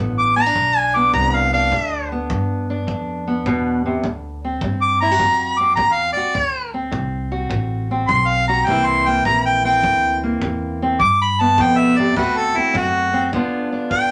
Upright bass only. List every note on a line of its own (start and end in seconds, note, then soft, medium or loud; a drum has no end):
0.00 0.54 A1 medium
0.56 1.12 B1 medium
1.14 1.70 C2 medium
1.72 2.28 D2 medium
2.30 2.86 G2 medium
2.88 3.44 F2 medium
3.46 4.02 E2 medium
4.03 4.60 D2 medium
4.61 5.18 G2 medium
5.19 5.76 F#2 medium
5.77 6.14 E2 medium
6.17 muted upright bass stroke soft
6.35 6.92 D2 medium
6.92 7.49 C2 medium
7.50 8.07 A1 medium
8.09 8.66 B1 loud
8.67 9.23 C2 medium
9.25 9.82 A#1 medium
9.83 10.40 D2 medium
10.41 10.98 E2 medium
11.00 11.56 G2 medium
11.58 12.14 F2 medium
12.16 12.53 D2 medium
12.56 muted upright bass stroke soft
12.75 13.31 F#2 medium